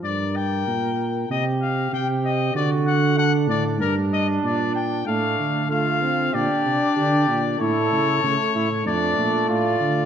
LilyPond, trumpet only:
\new Staff \with { instrumentName = "Trumpet" } { \time 4/4 \key g \minor \tempo 4 = 95 d''8 g''4. ees''8 f''8 g''8 ees''8 | d''8 fis''8 fis''8 d''8 bes'8 ees''8 d''8 g''8 | \key d \minor f''4 f''4 d''2 | cis''2 d''4 d''4 | }